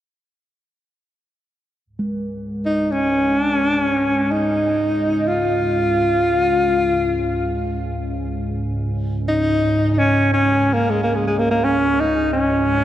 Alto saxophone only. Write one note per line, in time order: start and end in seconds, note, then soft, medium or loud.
2.66 2.93 D#4 medium
2.92 3.41 C#4 medium
3.41 3.55 D4 medium
3.55 3.69 C#4 medium
3.69 3.82 D4 medium
3.82 4.33 C#4 medium
4.31 5.29 D#4 medium
5.28 7.86 F4 medium
9.28 9.91 D#4 medium
9.91 10.00 D#4 soft
9.99 10.32 C#4 medium
10.33 10.75 C#4 medium
10.74 10.91 A#3 medium
10.90 11.03 G#3 medium
11.04 11.17 A#3 medium
11.15 11.27 G#3 medium
11.27 11.41 G#3 medium
11.39 11.51 A#3 medium
11.51 11.66 A#3 medium
11.64 12.02 C#4 medium
12.00 12.33 D#4 medium
12.33 12.84 C#4 medium